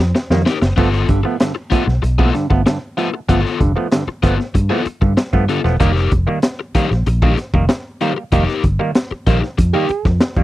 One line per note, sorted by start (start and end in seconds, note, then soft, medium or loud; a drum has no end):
0.00 0.12 F2 medium
0.00 muted overdriven electric guitar stroke soft
0.15 muted overdriven electric guitar stroke soft
0.15 snare medium
0.30 0.44 F2 medium
0.30 0.42 D#3 medium
0.30 0.42 G3 medium
0.30 0.42 A#3 medium
0.30 snare medium
0.46 0.56 D#4 medium
0.46 0.56 G4 medium
0.46 0.57 A#4 medium
0.46 snare medium
0.62 0.75 F#1 medium
0.62 muted overdriven electric guitar stroke soft
0.62 snare loud
0.76 1.05 G1 loud
0.76 0.89 F3 medium
0.76 0.89 A3 loud
0.76 1.06 B3 medium
0.76 0.89 B3 loud
0.76 1.06 F4 medium
0.76 1.07 A4 medium
0.76 kick loud
0.76 crash medium
0.93 snare soft
1.08 1.22 G1 medium
1.08 1.20 G2 medium
1.08 1.20 D3 medium
1.08 kick medium
1.08 closed hi-hat medium
1.23 1.36 F3 medium
1.23 1.36 A3 medium
1.23 1.36 B3 medium
1.23 muted overdriven electric guitar stroke soft
1.40 1.52 G2 medium
1.40 1.52 D3 medium
1.40 snare loud
1.40 closed hi-hat loud
1.55 muted overdriven electric guitar stroke soft
1.70 1.83 F3 medium
1.70 1.83 A3 medium
1.70 1.84 B3 medium
1.70 1.83 B3 medium
1.70 1.85 F4 medium
1.70 1.85 B4 medium
1.70 muted fingered electric bass stroke soft
1.70 kick loud
1.70 closed hi-hat medium
1.86 2.01 B1 medium
1.86 muted overdriven electric guitar stroke soft
1.86 snare soft
2.02 2.30 B1 loud
2.02 muted overdriven electric guitar stroke soft
2.02 closed hi-hat medium
2.18 2.30 F3 medium
2.18 2.30 A3 medium
2.18 2.30 B3 medium
2.18 2.33 B3 medium
2.18 2.33 F4 medium
2.18 2.34 A4 medium
2.18 kick medium
2.34 2.46 G2 medium
2.34 2.46 D3 medium
2.34 muted overdriven electric guitar stroke soft
2.34 snare soft
2.34 closed hi-hat medium
2.50 2.64 G1 medium
2.50 2.62 F3 medium
2.50 2.62 A3 medium
2.50 2.62 B3 medium
2.50 muted overdriven electric guitar stroke soft
2.50 kick loud
2.66 2.77 G2 medium
2.66 2.77 D3 medium
2.66 muted overdriven electric guitar stroke soft
2.66 snare loud
2.66 closed hi-hat medium
2.97 3.09 F3 medium
2.97 3.09 A3 medium
2.97 3.09 B3 medium
2.97 3.08 B3 medium
2.97 3.08 F4 medium
2.97 3.08 B4 medium
2.97 closed hi-hat medium
3.14 muted overdriven electric guitar stroke soft
3.29 3.43 G1 loud
3.29 3.40 F3 loud
3.29 3.40 A3 medium
3.29 3.58 B3 medium
3.29 3.40 B3 loud
3.29 3.58 F4 medium
3.29 3.59 A4 medium
3.29 kick loud
3.29 closed hi-hat medium
3.46 snare soft
3.60 3.74 F1 medium
3.60 3.72 G2 medium
3.60 3.72 D3 medium
3.60 kick medium
3.60 closed hi-hat medium
3.76 3.87 F3 medium
3.76 3.88 A3 medium
3.76 3.88 B3 medium
3.76 muted overdriven electric guitar stroke medium
3.91 4.03 G2 medium
3.91 4.03 D3 medium
3.91 snare loud
3.91 closed hi-hat loud
4.07 muted fingered electric bass stroke soft
4.07 muted overdriven electric guitar stroke soft
4.23 4.37 G1 loud
4.23 4.34 F3 medium
4.23 4.35 A3 medium
4.23 4.36 B3 medium
4.23 4.35 B3 medium
4.23 4.37 F4 medium
4.23 4.37 B4 medium
4.23 kick loud
4.23 closed hi-hat medium
4.39 muted overdriven electric guitar stroke soft
4.39 snare soft
4.54 4.68 G2 loud
4.54 muted overdriven electric guitar stroke soft
4.54 kick medium
4.54 closed hi-hat medium
4.70 4.82 F3 medium
4.70 4.82 A3 medium
4.70 4.82 B3 medium
4.70 4.85 B3 medium
4.70 4.86 F4 medium
4.70 4.86 A4 medium
4.85 muted overdriven electric guitar stroke soft
4.85 muted fingered electric bass stroke soft
4.85 closed hi-hat medium
5.01 5.13 G2 medium
5.01 5.15 G2 loud
5.01 5.13 D3 medium
5.01 muted overdriven electric guitar stroke medium
5.01 kick loud
5.17 muted overdriven electric guitar stroke soft
5.17 snare loud
5.17 closed hi-hat medium
5.33 5.47 G2 medium
5.33 5.45 F3 medium
5.33 5.45 A3 medium
5.33 5.45 B3 loud
5.33 kick medium
5.49 5.60 G2 medium
5.49 5.60 D3 medium
5.49 5.59 B3 medium
5.49 5.60 F4 medium
5.49 5.60 A4 medium
5.49 closed hi-hat medium
5.64 5.78 E1 medium
5.64 5.76 F3 medium
5.64 5.76 A3 medium
5.64 5.76 B3 medium
5.64 muted overdriven electric guitar stroke soft
5.64 snare soft
5.80 6.07 F1 loud
5.80 5.92 D#3 loud
5.80 5.92 G3 medium
5.80 5.92 A#3 loud
5.80 6.09 D#4 medium
5.80 6.10 G4 medium
5.80 6.10 A#4 loud
5.80 kick loud
5.80 closed hi-hat medium
5.96 snare soft
6.11 6.25 F1 loud
6.11 kick loud
6.11 closed hi-hat medium
6.27 6.39 D#3 medium
6.27 6.39 G3 medium
6.27 6.39 A#3 medium
6.27 muted overdriven electric guitar stroke soft
6.42 snare loud
6.42 closed hi-hat loud
6.59 muted overdriven electric guitar stroke soft
6.75 6.86 D#3 medium
6.75 6.86 G3 medium
6.75 6.87 A#3 medium
6.75 6.88 D#4 medium
6.75 6.89 G4 medium
6.75 6.89 C5 medium
6.75 muted fingered electric bass stroke soft
6.75 kick loud
6.75 closed hi-hat medium
6.91 7.04 A#1 medium
6.91 6.97 G3 soft
6.91 6.97 A#3 soft
6.91 muted overdriven electric guitar stroke soft
6.91 snare soft
7.06 7.34 A#1 loud
7.06 muted overdriven electric guitar stroke soft
7.06 closed hi-hat loud
7.22 7.34 D#3 medium
7.22 7.34 G3 medium
7.22 7.34 A#3 medium
7.22 7.36 D#4 medium
7.22 7.37 G4 medium
7.22 7.37 A#4 medium
7.22 kick loud
7.37 muted overdriven electric guitar stroke soft
7.37 snare soft
7.37 closed hi-hat medium
7.53 7.67 F1 medium
7.53 7.65 D#3 medium
7.53 7.65 G3 medium
7.53 7.65 A#3 medium
7.53 muted overdriven electric guitar stroke soft
7.53 kick loud
7.69 muted overdriven electric guitar stroke soft
7.69 snare loud
7.69 closed hi-hat medium
8.01 8.12 D#3 medium
8.01 8.12 G3 medium
8.01 8.13 A#3 medium
8.01 8.11 D#4 medium
8.01 8.11 G4 medium
8.01 8.12 C5 medium
8.01 closed hi-hat medium
8.16 8.23 G3 soft
8.16 8.23 A#3 soft
8.16 muted overdriven electric guitar stroke medium
8.32 8.46 F1 loud
8.32 8.44 D#3 loud
8.32 8.44 G3 medium
8.32 8.44 A#3 loud
8.32 8.61 D#4 medium
8.32 8.62 G4 medium
8.32 8.62 A#4 medium
8.32 kick loud
8.32 closed hi-hat medium
8.48 snare soft
8.64 8.77 G1 medium
8.64 kick loud
8.64 closed hi-hat medium
8.79 8.91 D#3 medium
8.79 8.91 G3 medium
8.79 8.91 A#3 medium
8.79 muted overdriven electric guitar stroke soft
8.95 snare loud
8.95 closed hi-hat loud
9.11 muted overdriven electric guitar stroke soft
9.11 muted fingered electric bass stroke soft
9.26 9.40 A#1 loud
9.26 9.38 D#3 medium
9.26 9.38 G3 medium
9.26 9.38 A#3 medium
9.26 9.40 D#4 medium
9.26 9.40 G4 medium
9.26 9.40 C5 medium
9.26 kick loud
9.26 closed hi-hat medium
9.42 9.49 G3 soft
9.42 muted overdriven electric guitar stroke medium
9.42 snare soft
9.58 9.72 F2 loud
9.58 muted overdriven electric guitar stroke soft
9.58 kick loud
9.58 closed hi-hat loud
9.73 9.85 D#3 medium
9.73 9.85 G3 medium
9.73 9.86 A#3 medium
9.73 9.88 D#4 medium
9.73 10.14 G4 loud
9.73 9.87 G4 medium
9.73 9.87 A#4 medium
9.89 muted fingered electric bass stroke soft
9.89 muted overdriven electric guitar stroke soft
9.89 closed hi-hat medium
10.05 10.19 F2 medium
10.05 muted overdriven electric guitar stroke soft
10.05 kick loud
10.05 snare soft
10.20 muted overdriven electric guitar stroke soft
10.20 snare loud
10.20 closed hi-hat medium
10.36 10.43 F2 medium
10.36 10.43 D#3 medium
10.36 10.43 G3 medium
10.36 10.43 A#3 medium
10.36 kick medium